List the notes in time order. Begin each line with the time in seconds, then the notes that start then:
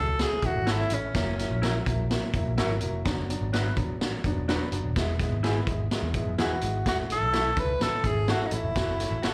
Already playing: C#2 C#4 F#4 A4
0.19 A3 C#4 E4 G#4, snare, closed hi-hat
0.42 A1 A3 C#4 E4 F#4, kick, closed hi-hat
0.55 G#1
0.67 A3 C#4 E4 A4 C#5, snare, closed hi-hat
0.71 E4
0.90 A1 A3 C#4 E4, closed hi-hat
1.14 F#1 F#3 A#3 E4, kick, snare, closed hi-hat
1.39 F#3 A#3 E4, snare, closed hi-hat
1.50 A#1
1.62 F#3 A#3 E4 A#4 C#5, snare, closed hi-hat
1.86 A#1 F#3 A#3 E4, kick, closed hi-hat
2.10 F#3 A#3 E4, snare, closed hi-hat
2.34 F#1 F#3 A#3 E4, kick, closed hi-hat
2.46 A#1
2.57 G#1 F#3 A#3 E4 A#4 C#5, snare, closed hi-hat
2.81 F1 F#3 A#3 E4, closed hi-hat
3.05 F#1 F#3 B3 D4, kick, snare, closed hi-hat
3.29 F#3 B3 D4, closed hi-hat
3.41 G#1
3.52 F#3 B3 D4 E4 F#4 B4, snare, closed hi-hat
3.76 A1 F#3 B3 D4, kick, closed hi-hat
4.01 F#3 B3 D4, snare, closed hi-hat
4.24 F#1 F#3 B3 D4, kick, closed hi-hat
4.36 E1
4.48 F#3 B3 D4 F#4 B4, snare, closed hi-hat
4.72 F#1 F#3 B3 D4, closed hi-hat
4.83 D#1
4.96 E1 G#3 B3 E4, kick, snare, closed hi-hat
5.20 G#3 B3 E4, kick, snare, closed hi-hat
5.31 G#1
5.43 G#3 B3 E4 G#4 B4, snare, closed hi-hat
5.66 G#1 G#3 B3 E4, kick, closed hi-hat
5.91 G#3 B3 E4, snare, closed hi-hat
6.03 E2
6.14 G#2 G#3 B3 E4, kick, closed hi-hat
6.26 F#2
6.38 E2 G#3 B3 E4 F#4 G#4 B4, snare, closed hi-hat
6.61 G#1 G#3 B3 E4, closed hi-hat
6.85 A1 A3 C#4 E4 F#4, kick, snare, closed hi-hat
7.10 A3 C#4 E4 A4, snare, closed hi-hat
7.21 B1
7.33 A3 C#4 E4 A4 C#5, snare, closed hi-hat
7.57 C#2 A3 C#4 E4 B4, kick, closed hi-hat
7.80 A1 A3 C#4 E4 A4, snare, closed hi-hat
8.04 G#1 A3 C#4 E4 G#4, kick, closed hi-hat
8.28 A3 C#4 E4 F#4 A4 C#5, snare, closed hi-hat
8.46 D#4
8.51 A1 A3 C#4 E4, closed hi-hat
8.63 F1
8.75 F#1 A3 C#4 F#4, kick, snare, closed hi-hat
9.00 A3 C#4 F#4, snare, closed hi-hat
9.11 A1
9.23 A3 C#4 F#4 A4 C#5, snare, closed hi-hat